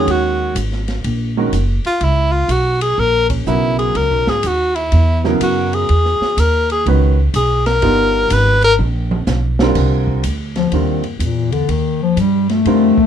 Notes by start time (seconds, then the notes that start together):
Already playing: D#3 G#3 C#4 F#4 G#4 C#5
0.07 D#2, ride
0.11 F#4
0.55 G#1, hi-hat pedal, ride
0.72 snare
0.88 snare, ride
1.04 A#1, ride
1.37 D#3 G#3 C#4 F#4 A#4
1.52 F#1, hi-hat pedal, ride
1.85 F4, muted upright bass stroke, ride
2.01 C#2 E4, ride
2.32 F4
2.48 B1 F#4, hi-hat pedal, ride
2.81 G#4, ride
2.98 A#1 A#4
3.30 C#4, kick, ride
3.46 B1 C#3 F#3 B3 E4 A#4, hi-hat pedal
3.79 G#4, ride
3.95 C#2 A#4, ride
4.11 B1
4.27 G#1 G#4, snare
4.43 D#2, hi-hat pedal, ride
4.47 F#4
4.75 E4, ride
4.92 E2, ride
5.24 C#3 F#3 B3 E4 A#4, snare
5.40 F#2 F#4, hi-hat pedal, ride
5.73 G#4, ride
5.89 E2, ride
6.05 snare
6.21 muted upright bass stroke, snare
6.37 D#2 A#4, hi-hat pedal, ride
6.70 G#4, ride
6.86 C#2 D#3 G#3 C#4 F#4 B4, ride
7.34 B1 G#4, hi-hat pedal, ride
7.66 A#4, snare, ride
7.82 G1 G3 B3 D#4 F4 A#4, ride
8.30 G#1 B4, hi-hat pedal, ride
8.62 A#4, ride
8.79 A#1, high tom
9.11 high tom
9.27 B1, snare, hi-hat pedal
9.59 D3 G3 C4 F4 A#4, snare
9.75 C2, kick, snare, crash
10.07 kick
10.23 D2, hi-hat pedal, ride
10.55 F3, snare, ride
10.72 D#2 D3 D#3 G3 C4 F4 A#4, ride
11.03 G2, ride
11.19 E2 A#2, hi-hat pedal, ride
11.52 D3, ride
11.68 D#2 D#3, ride
12.02 F3
12.17 G2 G3, hi-hat pedal, ride
12.49 A3, snare, ride
12.65 F2 D3 G3 C4 F4 A#4, ride
12.97 muted upright bass stroke, kick